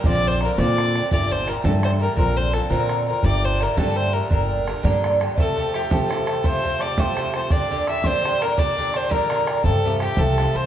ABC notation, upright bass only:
X:1
M:6/8
L:1/8
Q:3/8=112
K:Gm
V:1 name="Upright bass" clef=bass
B,,,3 B,,3 | G,,,3 G,,3 | B,,,3 B,,3 | G,,,3 G,,3 |
G,,,3 G,,3 | z6 | z6 | z6 |
z6 | G,,3 C,,2 C,, |]